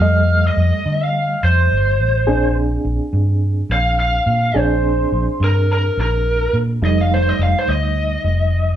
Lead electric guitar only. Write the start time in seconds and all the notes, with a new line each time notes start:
Already playing: F5
0.47 D#5
1.04 F5
1.45 C5
3.72 F5
4.00 F5
4.58 C5
5.44 A#4
5.73 A#4
6.01 A#4
6.85 D#5
7.01 F5
7.14 C5
7.29 D#5
7.43 F5
7.59 C5
7.70 D#5